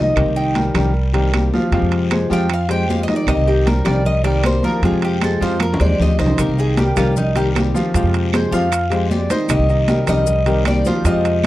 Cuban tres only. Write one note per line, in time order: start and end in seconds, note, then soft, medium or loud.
0.00 0.34 D#5 medium
0.36 0.91 G5 medium
2.33 2.51 G5 medium
2.53 2.70 F5 medium
2.71 2.89 G5 loud
2.90 3.02 F5 medium
3.03 3.15 D#5 medium
3.16 3.28 D5 medium
3.29 3.47 D#5 medium
3.48 3.66 G4 medium
3.67 3.86 A#4 medium
3.85 4.04 D5 medium
4.06 4.24 D#5 medium
4.24 4.43 D5 medium
4.46 4.64 C5 medium
4.64 4.83 A#4 medium
4.85 5.03 G#4 medium
5.05 5.22 G4 medium
5.24 5.42 A4 medium
5.42 5.61 C5 loud
5.62 5.81 A#4 medium
5.81 5.99 D5 medium
6.02 6.19 D#5 medium
6.19 6.38 C5 medium
6.40 6.58 A#4 medium
6.60 6.78 G#4 medium
6.79 6.97 G4 medium
6.97 7.16 F4 medium
7.18 7.36 D#4 medium
7.36 7.48 G4 medium
8.35 8.53 C5 medium
8.52 9.07 F5 loud
9.11 9.30 D5 medium
9.31 9.49 C5 medium
9.50 10.04 D#5 medium
9.89 10.08 A#4 soft
10.09 10.63 D#5 loud
10.68 10.86 D5 medium
10.86 11.05 C5 medium
11.06 11.47 D#5 medium